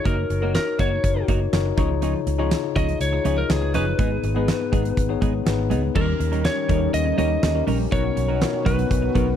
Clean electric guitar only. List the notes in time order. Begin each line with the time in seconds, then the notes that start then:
0.05 A#3 D#4 F#4 A#4
0.17 muted clean electric guitar stroke
0.30 muted clean electric guitar stroke
0.42 A#3 D#4 F#4 A#4
0.54 muted clean electric guitar stroke
0.67 muted clean electric guitar stroke
0.79 A#3 D#4 F#4 A#4
0.91 muted clean electric guitar stroke
1.16 muted clean electric guitar stroke
1.28 A#3 D#4 F#4 A#4
1.41 muted clean electric guitar stroke
1.65 muted clean electric guitar stroke
1.78 F3 C#4 D#4 G#4
1.90 muted clean electric guitar stroke
2.02 F3 C#4 D#4 G#4
2.14 muted clean electric guitar stroke
2.27 muted clean electric guitar stroke
2.39 F3 C#4 D#4 G#4
2.51 muted clean electric guitar stroke
2.64 muted clean electric guitar stroke
2.76 F3 C#4 D#4 G#4
2.88 muted clean electric guitar stroke
3.13 muted clean electric guitar stroke
3.25 F3 C#4 D#4 G#4
3.37 muted clean electric guitar stroke
3.62 muted clean electric guitar stroke
3.74 F3 C#4 D#4 G#4
3.87 muted clean electric guitar stroke
3.99 G#3 B3 D#4 G#4
4.11 muted clean electric guitar stroke
4.24 muted clean electric guitar stroke
4.36 G#3 B3 D#4 G#4
4.48 muted clean electric guitar stroke
4.60 muted clean electric guitar stroke
4.72 G#3 B3 D#4 G#4
4.85 muted clean electric guitar stroke
5.09 muted clean electric guitar stroke
5.22 G#3 B3 D#4 G#4
5.34 muted clean electric guitar stroke
5.58 muted clean electric guitar stroke
5.70 G#3 B3 D#4 G#4
5.83 muted clean electric guitar stroke
5.95 G3 C#4 D#4 A#4
6.07 muted clean electric guitar stroke
6.19 muted clean electric guitar stroke
6.32 G3 C#4 D#4 A#4
6.44 muted clean electric guitar stroke
6.57 muted clean electric guitar stroke
6.69 G3 C#4 D#4 A#4
6.81 muted clean electric guitar stroke
7.06 muted clean electric guitar stroke
7.18 G3 C#4 D#4 A#4
7.30 muted clean electric guitar stroke
7.55 muted clean electric guitar stroke
7.67 G3 C#4 D#4 A#4
7.79 muted clean electric guitar stroke
7.91 F#3 B3 D#4 A#4
8.04 muted clean electric guitar stroke
8.16 muted clean electric guitar stroke
8.29 F#3 B3 D#4 A#4
8.53 muted clean electric guitar stroke
8.65 F#3 B3 D#4 A#4
8.78 muted clean electric guitar stroke
9.02 muted clean electric guitar stroke
9.15 F#3 B3 D#4 A#4
9.28 muted clean electric guitar stroke